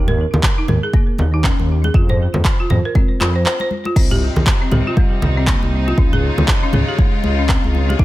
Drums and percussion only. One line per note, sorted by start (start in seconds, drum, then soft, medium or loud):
0.08 mid tom medium
0.08 muted conga medium
0.34 low conga loud
0.43 kick loud
0.43 clap loud
0.43 muted conga soft
0.68 mid tom medium
0.68 muted conga soft
0.68 high conga medium
0.68 low conga medium
0.93 kick loud
0.93 muted conga soft
0.93 high conga medium
1.18 muted conga soft
1.18 low conga loud
1.44 kick loud
1.44 clap loud
1.59 muted conga soft
1.84 muted conga medium
1.94 kick loud
2.09 mid tom medium
2.09 muted conga medium
2.34 high conga medium
2.34 low conga loud
2.45 kick loud
2.45 clap medium
2.45 muted conga soft
2.70 mid tom medium
2.70 muted conga medium
2.70 high conga medium
2.70 low conga medium
2.95 kick loud
2.95 muted conga soft
2.95 high conga medium
3.21 clap medium
3.21 muted conga medium
3.46 clap loud
3.60 muted conga soft
3.71 high conga medium
3.85 muted conga medium
3.96 kick loud
3.96 crash medium
4.11 mid tom medium
4.11 muted conga medium
4.36 low conga loud
4.46 kick loud
4.46 clap loud
4.46 muted conga soft
4.71 mid tom medium
4.71 muted conga medium
4.71 high conga medium
4.71 low conga medium
4.97 kick loud
4.97 muted conga soft
4.97 high conga medium
5.22 muted conga medium
5.22 low conga loud
5.47 kick loud
5.47 clap loud
5.62 muted conga soft
5.88 muted conga medium
5.98 kick loud
6.13 mid tom medium
6.13 muted conga medium
6.38 high conga medium
6.38 low conga loud
6.48 kick loud
6.48 clap loud
6.48 muted conga soft
6.73 mid tom medium
6.73 muted conga medium
6.73 high conga medium
6.73 low conga medium
6.98 kick loud
6.98 muted conga soft
6.98 high conga medium
7.24 muted conga medium
7.49 kick loud
7.49 clap loud
7.64 muted conga soft
7.75 high conga medium
7.90 muted conga medium
7.99 kick loud